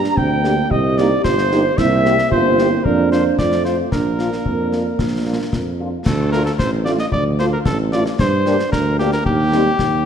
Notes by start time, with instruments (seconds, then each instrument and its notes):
Already playing: euphonium D4, flute section A#5, cornet A#5
0.04 snare
0.16 tuba D2, euphonium C4, cornet G5, flute section G5, concert bass drum
0.43 euphonium A#3, trombone section A#3 D4, french horn section A#3 D4 G4, snare
0.70 tuba C2, euphonium G4, flute section D#5, cornet D#5, concert bass drum
0.98 trombone section A#3 D#4, french horn section A#3 D#4 G4, flute section D5, cornet D5, snare
1.24 tuba G1, euphonium F4, flute section C5, cornet C5, concert bass drum, snare
1.38 snare
1.51 trombone section A#3 D#4, french horn section A#3 D#4 G4, euphonium D#4, snare
1.78 tuba C2, trombone section A#3 C4, euphonium E4, cornet E5, flute section E5, concert bass drum, snare, crash
2.05 french horn section A#3 C4 G4, euphonium G4, snare
2.18 snare
2.30 tuba G1, trombone section A#3 C4, euphonium F4, flute section C5, cornet C5, concert bass drum
2.58 french horn section A#3 C4 G4, euphonium E4, snare
2.84 tuba F2, trombone section A#3 D4, euphonium D4, cornet A#4, flute section A#4, concert bass drum
3.12 french horn section A#3 D4 F4, cornet C5, flute section C5, snare
3.38 tuba F2, trombone section A3 C4, euphonium F4, flute section D5, cornet D5, concert bass drum, snare
3.52 snare
3.65 french horn section A3 C4 F4, cornet C5, flute section C5, snare
3.92 tuba A#1, trombone section A#3 D4, euphonium D4, cornet A#4, flute section A#4, concert bass drum, snare
4.19 french horn section A#3 D4 F4, snare
4.33 snare
4.45 tuba F2, concert bass drum
4.72 french horn section A#3 D4 F4, snare
4.99 tuba A#1, concert bass drum, snare
5.26 french horn section A#3 D4 F4
5.52 tuba F2, concert bass drum, snare
5.79 french horn section A#3 D4 F4
6.05 tuba D2, cornet A4, concert bass drum, snare, crash
6.31 trombone section A3 F4, french horn section A3 D4 F4, cornet A#4, snare
6.45 cornet A4, snare
6.59 tuba A1, cornet C5, concert bass drum, snare
6.85 french horn section A3 D4 F4, trombone section A3 F4, cornet D5, snare
6.99 cornet D#5, snare
7.12 tuba D2, cornet D5, concert bass drum
7.39 french horn section A3 D4 F4, trombone section A3 F4, cornet C5, snare
7.53 cornet A#4
7.65 tuba A1, cornet A4, concert bass drum, snare
7.92 french horn section A3 D4 F4, trombone section A3 F4, cornet D5, snare
8.06 snare
8.19 tuba G2, cornet C5, concert bass drum, snare
8.45 french horn section A#3 D4 G4, trombone section A#3 D4, snare
8.59 snare
8.72 tuba D2, cornet A#4, concert bass drum, snare
8.99 trombone section A#3 D4, french horn section A#3 D4 G4, cornet G4, snare
9.12 cornet A#4, snare
9.25 tuba D#2, cornet G4, concert bass drum
9.52 trombone section G3 C4, french horn section C4 D#4 G4, snare
9.79 tuba D#2, concert bass drum, snare